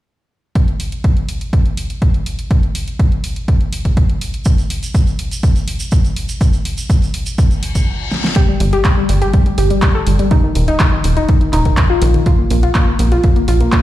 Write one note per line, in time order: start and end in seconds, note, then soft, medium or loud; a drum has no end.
0.55 kick loud
0.55 closed hi-hat medium
0.68 closed hi-hat soft
0.80 open hi-hat loud
0.92 closed hi-hat medium
1.04 kick loud
1.04 closed hi-hat medium
1.17 closed hi-hat soft
1.29 open hi-hat loud
1.41 closed hi-hat medium
1.53 kick loud
1.53 closed hi-hat medium
1.66 closed hi-hat soft
1.77 open hi-hat loud
1.90 closed hi-hat soft
2.02 kick loud
2.02 closed hi-hat medium
2.14 closed hi-hat soft
2.26 open hi-hat loud
2.39 closed hi-hat medium
2.51 kick loud
2.51 closed hi-hat medium
2.63 closed hi-hat soft
2.75 open hi-hat loud
2.88 closed hi-hat medium
2.99 kick loud
2.99 closed hi-hat medium
3.12 closed hi-hat soft
3.24 open hi-hat loud
3.36 closed hi-hat soft
3.48 kick loud
3.48 closed hi-hat soft
3.61 closed hi-hat soft
3.73 open hi-hat loud
3.85 kick medium
3.85 closed hi-hat soft
3.97 kick loud
3.97 closed hi-hat medium
4.09 closed hi-hat soft
4.21 open hi-hat loud
4.34 closed hi-hat soft
4.45 kick loud
4.45 closed hi-hat medium
4.45 shaker medium
4.58 closed hi-hat soft
4.58 shaker soft
4.70 open hi-hat loud
4.83 closed hi-hat soft
4.83 shaker medium
4.94 kick loud
4.94 closed hi-hat soft
4.94 shaker medium
5.07 closed hi-hat soft
5.07 shaker soft
5.19 open hi-hat loud
5.31 closed hi-hat soft
5.31 shaker medium
5.43 kick loud
5.43 closed hi-hat soft
5.43 shaker medium
5.56 closed hi-hat soft
5.56 shaker soft
5.68 open hi-hat loud
5.80 closed hi-hat soft
5.80 shaker medium
5.91 kick loud
5.91 closed hi-hat medium
5.91 shaker medium
6.05 closed hi-hat soft
6.05 shaker soft
6.16 open hi-hat loud
6.29 closed hi-hat medium
6.29 shaker medium
6.41 kick loud
6.41 closed hi-hat medium
6.41 shaker medium
6.53 closed hi-hat soft
6.53 shaker soft
6.65 open hi-hat loud
6.78 closed hi-hat soft
6.78 shaker medium
6.90 kick loud
6.90 closed hi-hat soft
6.90 shaker medium
7.02 closed hi-hat soft
7.02 shaker soft
7.14 open hi-hat loud
7.26 closed hi-hat soft
7.26 shaker medium
7.38 kick loud
7.38 closed hi-hat soft
7.38 reverse cymbal medium
7.38 shaker medium
7.51 closed hi-hat soft
7.51 shaker soft
7.63 open hi-hat loud
7.75 kick medium
7.75 closed hi-hat soft
7.75 shaker medium
8.12 snare medium
8.24 snare medium
8.36 8.42 G4 loud
8.36 kick loud
8.36 closed hi-hat medium
8.48 8.54 G3 medium
8.60 8.75 G1 medium
8.60 8.67 G3 medium
8.60 open hi-hat loud
8.73 8.79 G4 loud
8.73 closed hi-hat medium
8.84 8.91 G3 medium
8.84 kick loud
8.84 clap loud
8.84 closed hi-hat medium
8.97 9.03 G3 medium
9.09 9.24 G1 medium
9.09 9.15 G3 medium
9.09 open hi-hat loud
9.22 9.28 G4 loud
9.22 closed hi-hat medium
9.33 9.40 G3 medium
9.33 kick loud
9.33 closed hi-hat medium
9.46 9.52 G3 medium
9.46 closed hi-hat soft
9.58 9.73 G1 medium
9.58 9.64 G4 medium
9.58 open hi-hat loud
9.70 9.76 G3 medium
9.70 closed hi-hat medium
9.82 9.89 G3 medium
9.82 kick loud
9.82 clap loud
9.82 closed hi-hat medium
9.95 10.01 A4 loud
10.07 10.22 G1 medium
10.07 10.13 G3 medium
10.07 open hi-hat loud
10.19 10.25 G3 medium
10.19 closed hi-hat medium
10.31 10.37 D#4 loud
10.31 kick loud
10.31 closed hi-hat medium
10.43 10.50 D#3 medium
10.55 10.71 D#1 medium
10.55 10.62 D#3 medium
10.55 open hi-hat loud
10.68 10.74 D#4 medium
10.68 closed hi-hat medium
10.79 10.86 D#3 medium
10.79 kick loud
10.79 clap loud
10.79 closed hi-hat medium
10.92 10.98 D#3 medium
11.04 11.19 D#1 medium
11.04 11.11 D#3 medium
11.04 open hi-hat loud
11.17 11.23 D#4 medium
11.17 closed hi-hat soft
11.28 11.35 D#3 medium
11.28 kick loud
11.28 closed hi-hat medium
11.41 11.47 D#3 medium
11.41 closed hi-hat soft
11.53 11.68 D#1 medium
11.53 11.59 D#4 loud
11.53 clap soft
11.53 open hi-hat loud
11.65 11.71 D#3 medium
11.65 kick medium
11.65 closed hi-hat medium
11.77 11.84 D#3 medium
11.77 kick loud
11.77 clap loud
11.77 closed hi-hat medium
11.90 11.96 F4 medium
12.02 12.17 A#1 loud
12.02 12.08 D#3 medium
12.02 open hi-hat loud
12.14 12.20 D#3 medium
12.14 closed hi-hat medium
12.26 12.32 F4 loud
12.26 kick loud
12.26 closed hi-hat medium
12.39 12.45 A#3 medium
12.50 12.66 A#1 loud
12.50 12.57 A#3 medium
12.50 open hi-hat loud
12.63 12.69 F4 medium
12.63 closed hi-hat soft
12.75 12.81 A#3 medium
12.75 kick loud
12.75 clap loud
12.75 closed hi-hat medium
12.87 12.93 A#3 medium
12.99 13.14 A#1 medium
12.99 13.06 A#3 medium
12.99 open hi-hat loud
13.12 13.18 F4 medium
13.12 closed hi-hat soft
13.24 13.30 A#3 medium
13.24 kick loud
13.24 closed hi-hat medium
13.36 13.42 A#3 medium
13.36 closed hi-hat soft
13.48 13.63 A#1 medium
13.48 13.54 F4 medium
13.48 open hi-hat loud
13.61 13.67 A#3 medium
13.61 closed hi-hat soft
13.72 13.79 A#3 medium
13.72 kick loud
13.72 clap loud
13.72 closed hi-hat medium